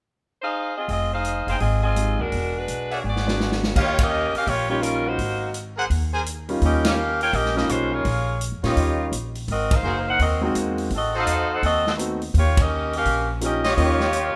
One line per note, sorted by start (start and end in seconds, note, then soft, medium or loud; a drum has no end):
0.42 0.75 D#4 medium
0.42 0.75 G#4 medium
0.42 0.74 C5 medium
0.42 0.75 F5 medium
0.78 0.89 C4 medium
0.78 0.89 F4 medium
0.78 0.89 G#4 medium
0.78 0.89 D#5 medium
0.88 1.43 F1 medium
0.88 1.11 C4 medium
0.88 1.11 F4 medium
0.88 1.11 G#4 medium
0.88 1.11 D#5 medium
0.88 kick soft
0.88 open hi-hat soft
1.13 1.46 D#4 medium
1.13 1.46 G#4 medium
1.13 1.46 C5 medium
1.13 1.46 F5 medium
1.25 closed hi-hat soft
1.47 1.59 F#1 medium
1.47 1.60 D#4 medium
1.47 1.56 G#4 medium
1.47 1.60 G#4 medium
1.47 1.56 C5 medium
1.47 1.60 C5 medium
1.47 1.56 D#5 medium
1.47 1.56 F5 medium
1.47 1.60 G5 medium
1.47 open hi-hat soft
1.60 2.15 G#1 medium
1.60 1.82 C4 medium
1.60 1.82 F4 medium
1.60 1.82 G#4 medium
1.60 1.82 D#5 medium
1.60 kick soft
1.60 open hi-hat soft
1.84 2.17 C4 medium
1.84 2.17 F4 medium
1.84 2.17 G#4 medium
1.84 2.17 D#5 medium
1.96 2.17 G#3 soft
1.96 2.17 C4 soft
1.96 2.17 D#4 soft
1.96 2.18 G4 soft
1.96 closed hi-hat soft
2.19 2.31 D#2 medium
2.19 2.55 G#3 medium
2.19 2.55 D4 medium
2.19 2.55 F#4 medium
2.19 2.55 A#4 medium
2.19 kick soft
2.32 2.65 E1 medium
2.32 kick soft
2.32 open hi-hat soft
2.56 2.91 G#3 medium
2.56 2.91 D4 medium
2.56 2.91 F#4 medium
2.56 2.91 B4 medium
2.68 3.01 B1 medium
2.68 closed hi-hat soft
2.91 3.04 A#3 medium
2.91 3.04 D4 medium
2.91 3.04 F#4 medium
2.91 3.00 G#4 medium
2.91 3.05 C#5 medium
2.91 3.00 D5 medium
2.91 3.00 E5 medium
2.91 3.00 F#5 medium
2.91 open hi-hat soft
3.04 3.72 G#1 medium
3.04 3.60 B3 medium
3.04 3.60 F#4 medium
3.04 3.60 G#4 medium
3.04 3.60 D5 medium
3.16 snare soft
3.26 3.72 G#3 medium
3.26 3.73 B3 soft
3.26 3.73 D4 medium
3.26 3.73 F#4 medium
3.26 snare medium
3.40 snare medium
3.52 snare medium
3.63 snare medium
3.75 4.30 D#2 medium
3.75 3.98 A#3 medium
3.75 3.98 F4 medium
3.75 4.30 G4 medium
3.75 3.98 G4 medium
3.75 4.30 C#5 medium
3.75 3.98 C#5 medium
3.75 4.30 D#5 medium
3.75 4.30 F5 medium
3.75 kick medium
3.75 crash medium
3.98 4.35 C#4 medium
3.98 4.35 G4 medium
3.98 4.35 A#4 medium
3.98 4.35 D#5 medium
3.98 kick medium
3.98 ride medium
4.34 4.47 C#4 medium
4.34 4.47 G4 medium
4.34 4.47 A#4 medium
4.34 4.47 F5 medium
4.34 muted upright bass stroke soft
4.34 open hi-hat soft
4.47 5.15 A#1 medium
4.47 4.69 A#3 medium
4.47 4.68 F4 medium
4.47 4.69 G4 medium
4.47 4.69 C#5 medium
4.47 kick soft
4.47 open hi-hat soft
4.69 5.16 G3 medium
4.69 5.16 A#3 medium
4.69 4.82 A#3 medium
4.69 5.16 C#4 medium
4.69 5.16 D#4 medium
4.69 4.81 F4 medium
4.69 5.16 F4 medium
4.69 4.82 G4 medium
4.69 4.82 C#5 medium
4.82 5.06 G3 medium
4.82 5.06 C#4 medium
4.82 5.06 F4 medium
4.82 5.06 A#4 medium
4.82 closed hi-hat medium
5.06 5.55 A#3 medium
5.06 5.55 D#4 medium
5.06 5.55 F#4 medium
5.06 5.55 C5 medium
5.18 5.87 G#1 medium
5.18 kick soft
5.18 open hi-hat soft
5.54 closed hi-hat medium
5.77 5.86 G#4 medium
5.77 5.86 A#4 medium
5.77 5.86 C5 medium
5.77 5.86 F#5 loud
5.90 6.58 D#2 medium
5.90 kick soft
5.90 open hi-hat soft
6.13 6.22 G#4 medium
6.13 6.22 A#4 medium
6.13 6.22 C5 medium
6.13 6.22 G#5 medium
6.26 closed hi-hat medium
6.49 6.95 G3 medium
6.49 6.95 A#3 medium
6.49 6.95 C#4 medium
6.49 6.95 D#4 medium
6.49 6.96 F4 medium
6.49 open hi-hat soft
6.62 7.30 D#2 medium
6.62 6.84 C#4 medium
6.62 6.84 G4 medium
6.62 6.84 A#4 medium
6.62 6.84 D#5 loud
6.62 kick soft
6.62 open hi-hat soft
6.84 7.22 C#4 medium
6.84 6.93 G4 medium
6.84 7.22 G4 medium
6.84 7.20 A#4 medium
6.84 6.93 C#5 medium
6.84 6.93 D#5 medium
6.84 6.93 F5 medium
6.84 7.22 F5 medium
6.84 snare medium
6.84 ride medium
7.21 7.33 F4 medium
7.21 7.32 A#4 medium
7.21 7.33 C#5 medium
7.21 7.33 G5 medium
7.21 open hi-hat soft
7.33 7.67 A#1 medium
7.33 7.55 C#4 medium
7.33 7.55 G4 medium
7.33 7.55 A#4 medium
7.33 7.55 D#5 loud
7.33 kick soft
7.33 open hi-hat soft
7.45 snare soft
7.55 8.02 G3 medium
7.55 8.02 A#3 medium
7.55 8.02 C#4 medium
7.55 7.68 C#4 medium
7.55 8.03 D#4 medium
7.55 8.03 F4 medium
7.55 7.68 G4 medium
7.55 7.68 A#4 medium
7.55 7.68 D#5 medium
7.55 snare soft
7.69 8.02 B1 medium
7.69 7.92 G#3 medium
7.69 7.92 C#4 medium
7.69 7.91 F4 medium
7.69 7.92 C5 medium
7.69 closed hi-hat medium
7.92 8.41 A#3 medium
7.92 8.41 F4 medium
7.92 8.41 G#4 medium
7.92 8.41 C#5 medium
8.05 8.49 A#1 medium
8.05 kick soft
8.05 open hi-hat soft
8.41 closed hi-hat medium
8.52 8.63 F2 medium
8.63 8.75 A#2 medium
8.63 9.10 G3 medium
8.63 9.10 A#3 medium
8.63 9.10 C#4 soft
8.63 9.10 D#4 medium
8.63 9.10 F4 medium
8.63 9.10 G4 medium
8.63 9.10 C#5 medium
8.63 9.10 D#5 medium
8.63 snare soft
8.63 open hi-hat soft
8.76 9.10 D#2 medium
8.76 kick soft
8.76 open hi-hat soft
9.12 9.45 A#1 medium
9.12 closed hi-hat medium
9.35 open hi-hat soft
9.48 9.81 G#1 medium
9.48 9.71 C4 medium
9.48 9.71 F#4 medium
9.48 9.71 A#4 medium
9.48 9.71 D#5 medium
9.48 kick soft
9.48 open hi-hat soft
9.71 10.08 D#4 medium
9.71 10.08 A#4 medium
9.71 10.08 C5 medium
9.71 10.08 F5 medium
9.71 kick medium
9.71 ride medium
9.83 10.17 F#1 medium
9.83 9.99 F#4 medium
9.83 10.00 G#4 medium
9.83 9.99 A#4 medium
9.83 9.99 C5 medium
10.09 10.20 D#4 medium
10.09 10.20 A#4 medium
10.09 10.20 C5 medium
10.09 10.20 F#5 medium
10.19 10.53 D#2 medium
10.19 10.42 C4 medium
10.19 10.42 F#4 medium
10.19 10.42 A#4 medium
10.19 10.42 D#5 medium
10.19 kick soft
10.19 open hi-hat soft
10.41 10.88 G#3 medium
10.41 10.88 A#3 medium
10.41 10.89 C4 medium
10.41 10.56 C4 medium
10.41 10.89 D#4 medium
10.41 10.89 F#4 medium
10.41 10.55 F#4 medium
10.41 10.55 A#4 medium
10.41 10.55 D#5 medium
10.55 10.89 E2 medium
10.55 closed hi-hat medium
10.78 open hi-hat soft
10.90 11.24 A1 medium
10.90 kick soft
10.90 open hi-hat soft
10.95 11.15 C4 medium
10.95 11.15 F#4 medium
10.95 11.15 A4 medium
10.95 11.15 D#5 medium
11.14 11.49 D#4 medium
11.14 11.60 F#4 medium
11.14 11.60 A4 medium
11.14 11.49 A4 medium
11.14 11.60 C5 medium
11.14 11.60 D#5 medium
11.14 11.49 F5 medium
11.18 11.49 C5 medium
11.27 11.60 E2 medium
11.27 closed hi-hat medium
11.52 11.64 D#4 medium
11.52 11.64 A4 medium
11.52 11.64 C5 medium
11.52 11.64 F#5 medium
11.63 12.31 D#2 medium
11.63 11.85 C4 medium
11.63 11.85 F#4 medium
11.63 11.85 A4 medium
11.63 11.85 D#5 loud
11.63 kick soft
11.63 open hi-hat soft
11.87 11.93 C4 medium
11.87 11.93 F#4 medium
11.87 11.93 A4 medium
11.87 11.93 D#5 medium
11.87 snare soft
11.97 12.18 A3 medium
11.97 12.19 B3 medium
11.97 12.19 C4 medium
11.97 12.19 D#4 medium
11.97 12.19 F#4 medium
11.97 closed hi-hat medium
12.22 open hi-hat soft
12.34 13.02 D#2 medium
12.34 12.57 A#3 medium
12.34 12.57 F4 medium
12.34 12.58 G4 medium
12.34 12.57 C#5 medium
12.34 kick soft
12.34 open hi-hat soft
12.57 12.95 C#4 medium
12.57 12.95 G4 medium
12.57 12.95 A#4 medium
12.57 12.95 D#5 medium
12.57 kick medium
12.57 ride medium
12.93 13.28 C#4 medium
12.93 13.28 G4 medium
12.93 13.28 A#4 medium
12.93 13.28 F5 medium
12.93 open hi-hat soft
13.05 13.74 A#1 medium
13.05 kick soft
13.05 open hi-hat soft
13.40 13.62 F3 medium
13.40 13.62 A#3 soft
13.40 13.62 C#4 medium
13.40 13.62 D#4 medium
13.40 13.63 G4 medium
13.40 closed hi-hat medium
13.45 13.65 C#4 medium
13.45 13.65 G4 medium
13.45 13.65 A#4 medium
13.45 13.65 D#5 medium
13.64 14.36 A#3 medium
13.64 13.73 F4 medium
13.64 13.73 G4 medium
13.64 14.36 G4 medium
13.64 13.73 C#5 medium
13.64 13.73 D#5 loud
13.64 snare soft
13.64 open hi-hat soft
13.69 14.36 F4 medium
13.69 14.36 C#5 medium
13.77 14.32 D#2 medium
13.77 13.98 F3 medium
13.77 13.98 A#3 medium
13.77 13.98 C#4 medium
13.77 13.98 D#4 medium
13.77 14.31 F4 medium
13.77 14.31 G4 medium
13.77 13.99 G4 medium
13.77 14.31 C#5 medium
13.77 14.31 D#5 medium
13.77 kick soft
13.77 open hi-hat soft
14.00 snare soft
14.13 closed hi-hat medium